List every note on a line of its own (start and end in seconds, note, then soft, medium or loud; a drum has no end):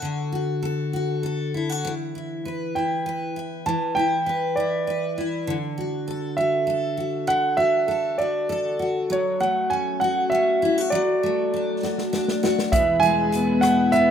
0.00 1.84 D3 medium
0.00 0.31 F#4 soft
0.00 0.61 A4 medium
0.32 0.92 F#4 soft
0.63 1.22 A4 medium
0.93 1.54 F#4 soft
1.23 1.90 A4 medium
1.54 1.69 E4 soft
1.69 1.91 F#4 soft
1.85 3.65 E3 medium
2.15 2.75 E4 soft
2.45 3.05 B4 soft
2.75 3.35 E4 soft
2.75 3.62 G5 medium
3.06 4.25 B4 medium
3.36 3.95 E4 soft
3.66 5.47 E3 medium
3.66 3.97 A5 medium
3.95 4.56 E4 soft
3.95 4.58 G5 medium
4.26 4.86 B4 soft
4.56 5.17 E4 medium
4.56 5.20 D5 medium
4.87 5.53 B4 medium
5.18 5.53 E4 soft
5.47 7.26 D3 medium
5.78 6.37 F#4 medium
6.08 6.66 A4 medium
6.37 6.97 F#4 soft
6.37 7.30 E5 medium
6.67 7.88 A4 medium
6.97 7.57 F#4 soft
7.27 9.09 D3 medium
7.27 7.56 F#5 medium
7.57 8.18 F#4 soft
7.57 8.20 E5 medium
7.88 8.49 A4 medium
8.18 8.79 F#4 soft
8.18 8.83 D5 medium
8.49 11.99 A4 medium
8.79 10.01 F#4 soft
9.10 10.91 F#3 medium
9.10 9.42 C#5 medium
9.40 10.98 A3 soft
9.40 9.72 F#5 medium
9.70 10.30 C#4 soft
9.70 10.02 G#5 medium
10.00 10.62 F#4 medium
10.00 10.32 F#5 medium
10.30 10.98 C#4 medium
10.30 10.93 E5 medium
10.62 10.78 E4 medium
10.78 10.98 F#4 medium
10.90 12.72 F#3 medium
10.90 11.55 D5 medium
11.23 12.79 A3 soft
11.54 12.12 D4 medium
11.83 12.42 F#4 medium
11.83 snare soft
11.98 snare soft
12.13 12.79 D4 medium
12.13 snare medium
12.28 snare medium
12.43 12.79 F#4 medium
12.43 snare medium
12.59 snare medium
12.72 14.11 E2 medium
12.72 14.11 B2 medium
12.72 14.11 E3 medium
12.72 14.11 G#3 medium
12.72 14.11 E4 medium
12.72 14.11 B4 medium
12.72 13.03 E5 medium
12.72 kick loud
12.72 closed hi-hat medium
13.00 14.11 G#3 medium
13.00 13.63 G#5 loud
13.00 closed hi-hat soft
13.32 13.92 B3 medium
13.32 closed hi-hat medium
13.61 14.11 E4 medium
13.61 13.93 F#5 medium
13.61 cross-stick loud
13.61 closed hi-hat medium
13.92 14.11 B3 medium
13.92 14.11 E5 loud
13.92 closed hi-hat soft